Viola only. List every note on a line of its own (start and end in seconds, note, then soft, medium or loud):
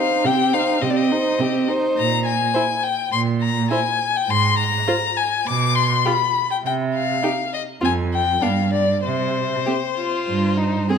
0.00 0.27 D#4 soft
0.25 0.56 C4 soft
0.54 0.83 D#4 soft
0.83 1.13 C4 soft
1.12 1.41 D#4 soft
1.40 1.70 C4 soft
1.68 1.97 D#4 soft
2.55 2.63 E4 soft
3.71 3.79 E4 soft
4.88 4.96 F4 soft
6.06 6.14 F4 soft
7.23 7.31 D#4 soft
7.83 7.91 C4 soft
8.43 8.51 B3 soft
9.67 9.75 C4 soft
10.90 10.98 C4 soft